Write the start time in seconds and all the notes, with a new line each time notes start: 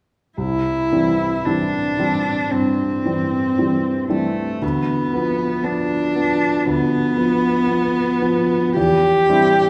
0.38 C2 E4
0.93 E3 G3 C4
1.45 E3 G3 C4 D4
1.99 E3 G3 C4
2.51 G2 C4
3.06 E3 G3 C4
3.58 E3 G3 C4
4.10 E3 G3 A3 C4
4.62 D2 B3
5.14 F3 B3
5.63 F3 B3 D4
6.16 F3 B3
6.66 D2 B3
7.17 F3 B3
7.67 F3 B3
8.22 F3 B3
8.76 E2 G4
9.30 G3 C4 E4